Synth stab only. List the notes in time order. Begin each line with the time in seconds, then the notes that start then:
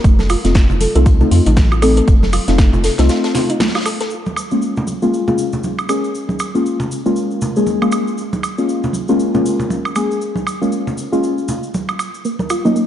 0.45 A3 C4 D#4 F4
0.95 A3 C4 D#4 F4
1.21 A3 C4 D#4 F4
1.82 A3 C4 D#4 A4
2.48 A3 C4 D#4 F4
2.99 A3 C4 D#4 F4
4.51 G#3 A#3 C#4 F4
5.02 G#3 A#3 C#4 F4
5.28 G#3 A#3 C#4 F4
5.89 G#3 A#3 C#4 G#4
6.55 G#3 A#3 C#4 F4
7.06 G#3 A#3 C#4 F4
7.57 G#3 A#3 C#4 G#4
7.82 G#3 A#3 C#4 F4
8.58 G#3 A#3 C#4 F4
9.09 G#3 A#3 C#4 F4
9.34 G#3 A#3 C#4 F4
9.96 G#3 A#3 C#4 G#4
10.62 G#3 A#3 C#4 F4
11.12 G#3 A#3 C#4 F4
12.65 F#3 A#3 C#4 D#4